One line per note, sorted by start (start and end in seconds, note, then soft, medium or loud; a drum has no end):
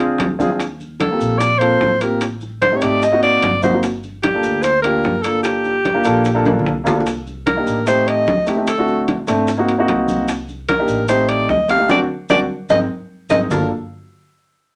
0.00 0.15 D2 medium
0.00 0.24 C4 medium
0.00 0.25 D4 medium
0.00 0.25 F4 medium
0.00 0.40 F4 medium
0.00 0.25 G#4 loud
0.00 high conga soft
0.00 high timbale medium
0.00 maracas soft
0.18 1.14 D#2 medium
0.18 high bongo medium
0.18 low bongo medium
0.18 high conga medium
0.18 high timbale medium
0.18 low timbale medium
0.18 maracas soft
0.39 0.46 C4 medium
0.39 0.47 D4 medium
0.39 0.47 F4 medium
0.39 0.48 G#4 loud
0.39 high conga medium
0.39 maracas medium
0.50 0.60 C4 medium
0.50 0.60 D4 medium
0.50 0.61 F4 medium
0.50 0.61 G#4 medium
0.60 high bongo medium
0.60 high conga soft
0.60 high timbale medium
0.60 maracas medium
0.80 high conga soft
0.80 maracas soft
1.00 1.40 A4 medium
1.00 high bongo medium
1.00 high conga loud
1.00 high timbale medium
1.00 maracas soft
1.10 1.46 A#3 medium
1.10 1.46 C4 medium
1.10 1.47 F4 medium
1.10 1.47 G4 medium
1.19 1.76 A#1 medium
1.19 maracas medium
1.39 1.60 D5 loud
1.39 high bongo medium
1.39 high conga soft
1.39 high timbale medium
1.39 maracas medium
1.59 1.89 A#3 medium
1.59 1.89 C4 medium
1.59 1.89 F4 medium
1.59 1.90 A4 medium
1.59 2.03 C5 loud
1.59 high conga soft
1.59 high timbale medium
1.59 maracas soft
1.81 2.76 A1 medium
1.81 high bongo medium
1.81 low bongo medium
1.81 high conga medium
1.81 low timbale medium
1.81 maracas soft
2.00 2.21 A#3 medium
2.00 2.22 C4 medium
2.00 2.22 F4 medium
2.00 2.22 G4 medium
2.00 2.22 A#4 medium
2.00 high conga soft
2.00 high timbale medium
2.00 maracas medium
2.21 high bongo medium
2.21 high conga soft
2.21 high timbale medium
2.21 maracas medium
2.41 high bongo soft
2.41 high conga soft
2.41 maracas soft
2.61 2.78 C5 medium
2.61 high bongo soft
2.61 high conga medium
2.61 high timbale medium
2.61 maracas soft
2.71 2.79 A3 medium
2.71 2.79 C4 medium
2.71 2.79 D#4 medium
2.71 2.80 G4 medium
2.76 2.84 C#5 medium
2.81 3.38 G#1 medium
2.81 3.02 A3 medium
2.81 3.02 C4 medium
2.81 3.02 D#4 medium
2.81 3.03 G4 medium
2.81 3.05 D5 loud
2.81 high bongo soft
2.81 high conga soft
2.81 high timbale medium
2.81 maracas medium
3.02 3.23 D#5 loud
3.02 high bongo medium
3.02 high conga soft
3.02 maracas loud
3.11 3.47 A#3 medium
3.11 3.48 C4 medium
3.11 3.48 D#4 medium
3.11 3.48 F#4 medium
3.23 3.61 D5 loud
3.23 high bongo soft
3.23 high conga soft
3.23 high timbale medium
3.23 maracas soft
3.42 4.37 G1 medium
3.42 high bongo medium
3.42 low bongo medium
3.42 high conga medium
3.42 high timbale medium
3.42 low timbale medium
3.42 maracas soft
3.62 3.70 A#3 medium
3.62 3.70 C4 medium
3.62 3.70 D#4 medium
3.62 3.71 F#4 medium
3.62 3.82 C5 medium
3.62 high conga medium
3.62 maracas medium
3.73 3.83 A#3 medium
3.73 3.83 C4 medium
3.73 3.83 D#4 medium
3.73 3.84 F#4 medium
3.83 high bongo medium
3.83 high timbale medium
3.83 maracas medium
4.03 high conga soft
4.03 maracas soft
4.23 4.64 G4 medium
4.23 high bongo medium
4.23 high conga medium
4.23 high timbale loud
4.23 maracas soft
4.34 4.69 A#3 medium
4.34 4.69 D4 medium
4.34 4.70 F4 medium
4.34 4.70 A4 medium
4.43 5.00 D2 loud
4.43 high conga soft
4.43 maracas medium
4.63 4.81 C5 loud
4.63 high bongo medium
4.63 high conga soft
4.63 high timbale medium
4.63 maracas medium
4.82 5.12 A#3 medium
4.82 5.12 D4 medium
4.82 5.13 F4 medium
4.82 5.13 G4 medium
4.82 5.24 A#4 medium
4.82 high conga soft
4.82 high timbale medium
4.82 maracas soft
5.03 5.99 G1 medium
5.03 high bongo medium
5.03 low bongo medium
5.03 high conga medium
5.03 maracas soft
5.22 5.74 A#3 medium
5.22 5.74 D4 medium
5.22 5.74 F4 medium
5.22 5.42 A4 medium
5.22 5.75 A4 medium
5.22 high conga soft
5.22 high timbale medium
5.22 maracas medium
5.43 6.61 G4 medium
5.43 high bongo medium
5.43 high conga soft
5.43 high timbale medium
5.43 maracas medium
5.64 high bongo soft
5.64 high conga soft
5.64 maracas soft
5.84 high bongo medium
5.84 high conga medium
5.84 high timbale medium
5.84 maracas soft
5.94 6.01 A#3 medium
5.94 6.02 D4 medium
5.94 6.02 F4 medium
5.94 6.02 G4 medium
6.04 6.62 A#1 medium
6.04 6.26 A#3 medium
6.04 6.26 D4 medium
6.04 6.26 F4 medium
6.04 6.27 A4 loud
6.04 high bongo soft
6.04 high conga soft
6.04 high timbale medium
6.04 maracas medium
6.25 high bongo medium
6.25 high conga soft
6.25 maracas medium
6.34 6.70 A#3 medium
6.34 6.70 D4 medium
6.34 6.71 F4 medium
6.34 6.71 A4 loud
6.45 high bongo soft
6.45 high conga medium
6.45 high timbale medium
6.45 maracas soft
6.59 low conga medium
6.65 7.60 C2 medium
6.65 high bongo medium
6.65 low bongo medium
6.65 maracas soft
6.84 6.92 A#3 medium
6.84 6.92 D4 medium
6.84 6.93 F4 medium
6.84 6.93 A4 medium
6.84 high bongo medium
6.84 low conga medium
6.84 low timbale loud
6.84 maracas medium
6.95 7.06 A#3 medium
6.95 7.06 D4 medium
6.95 7.06 F4 medium
6.95 7.06 A4 medium
7.00 low bongo medium
7.06 high bongo medium
7.06 high conga soft
7.06 high timbale medium
7.06 maracas medium
7.27 high conga soft
7.27 maracas soft
7.47 7.84 A#4 medium
7.47 high bongo medium
7.47 high conga medium
7.47 high timbale medium
7.47 maracas soft
7.56 7.77 A#3 medium
7.56 7.78 D4 medium
7.56 7.78 D#4 medium
7.56 7.78 G4 medium
7.66 8.23 A1 medium
7.66 high conga soft
7.66 maracas medium
7.86 8.29 A3 medium
7.86 8.29 C4 medium
7.86 8.29 D#4 medium
7.86 8.30 G4 medium
7.86 8.10 C5 medium
7.86 high bongo medium
7.86 high conga soft
7.86 high timbale medium
7.86 maracas loud
8.07 8.48 D#5 medium
8.07 high conga soft
8.07 high timbale medium
8.07 maracas soft
8.26 9.21 D2 medium
8.26 high bongo medium
8.26 low bongo medium
8.26 high conga medium
8.26 low timbale medium
8.26 maracas soft
8.46 8.54 A3 medium
8.46 8.54 C4 medium
8.46 8.54 D#4 medium
8.46 8.55 G4 medium
8.46 high conga soft
8.46 high timbale medium
8.46 maracas medium
8.56 8.67 A3 medium
8.56 8.67 C4 medium
8.56 8.67 D#4 medium
8.56 8.68 G4 medium
8.67 9.06 A4 medium
8.67 high bongo medium
8.67 high conga soft
8.67 high timbale medium
8.67 maracas medium
8.78 9.13 A3 medium
8.78 9.13 C4 medium
8.78 9.13 D4 medium
8.78 9.13 F#4 medium
8.87 high bongo soft
8.87 high conga soft
8.87 maracas soft
9.07 high bongo medium
9.07 high conga medium
9.07 high timbale medium
9.07 maracas soft
9.27 9.84 G#1 medium
9.27 9.48 A3 medium
9.27 9.48 C4 medium
9.27 9.48 D4 medium
9.27 9.49 A4 medium
9.27 high bongo soft
9.27 high conga soft
9.27 high timbale medium
9.27 maracas medium
9.47 high bongo medium
9.47 high conga soft
9.47 maracas medium
9.57 9.71 A#3 medium
9.57 9.72 C4 medium
9.57 9.72 D#4 medium
9.57 9.73 F#4 medium
9.68 high bongo soft
9.68 high conga soft
9.68 high timbale medium
9.68 maracas soft
9.78 10.28 A#3 medium
9.78 10.29 C4 medium
9.78 10.29 D#4 medium
9.78 10.29 F#4 loud
9.88 10.83 C2 medium
9.88 high bongo medium
9.88 low bongo medium
9.88 high conga medium
9.88 high timbale medium
9.88 low timbale medium
9.88 maracas soft
10.08 high conga medium
10.08 maracas medium
10.28 high bongo medium
10.28 high conga soft
10.28 high timbale medium
10.28 maracas medium
10.48 high conga soft
10.48 maracas soft
10.69 11.06 A#4 medium
10.69 high bongo medium
10.69 high conga medium
10.69 high timbale medium
10.69 maracas soft
10.78 11.00 A#3 medium
10.78 11.00 D4 medium
10.78 11.00 D#4 medium
10.78 11.00 G4 medium
10.88 11.45 A1 medium
10.88 high conga soft
10.88 maracas medium
11.08 11.51 A3 medium
11.08 11.51 C4 medium
11.08 11.51 D#4 medium
11.08 11.52 G4 medium
11.08 11.30 C5 medium
11.08 high bongo medium
11.08 high conga soft
11.08 high timbale medium
11.08 maracas medium
11.29 11.49 D5 medium
11.29 high conga soft
11.29 high timbale medium
11.29 maracas soft
11.49 11.86 D2 medium
11.49 11.68 D#5 medium
11.49 high bongo medium
11.49 low bongo medium
11.49 high conga medium
11.49 maracas soft
11.68 11.76 A3 medium
11.68 11.76 C4 medium
11.68 11.76 D#4 medium
11.68 11.77 G4 medium
11.68 11.89 F5 loud
11.68 high conga soft
11.68 high timbale medium
11.68 maracas medium
11.78 11.89 A3 medium
11.78 11.88 C4 medium
11.78 11.90 D#4 medium
11.78 11.90 G4 medium
11.89 12.04 D2 medium
11.89 12.02 C4 medium
11.89 12.03 D4 medium
11.89 12.02 F#4 medium
11.89 12.00 D5 medium
11.89 low bongo medium
11.89 high conga medium
11.89 high timbale loud
11.89 maracas medium
12.29 12.45 D2 medium
12.29 12.43 C4 medium
12.29 12.43 D4 medium
12.29 12.43 F#4 medium
12.29 12.40 D5 medium
12.29 low bongo medium
12.29 high conga medium
12.29 high timbale loud
12.29 maracas medium
12.69 12.84 G#1 medium
12.69 12.83 G#3 medium
12.69 12.83 C4 medium
12.69 12.83 D#4 medium
12.69 12.80 D#5 medium
12.69 low bongo medium
12.69 high conga medium
12.69 high timbale medium
12.69 maracas loud
13.29 13.45 G#1 medium
13.29 13.43 G#3 medium
13.29 13.43 C4 medium
13.29 13.43 D#4 medium
13.29 13.40 D#5 medium
13.29 low bongo medium
13.29 high conga medium
13.29 high timbale medium
13.29 maracas loud
13.50 13.69 G1 medium
13.50 13.69 A#3 medium
13.50 13.70 D4 medium
13.50 13.69 F4 medium
13.50 13.69 A4 medium
13.50 13.69 A#4 medium
13.50 low bongo medium
13.50 low conga medium
13.50 low timbale medium
13.50 maracas loud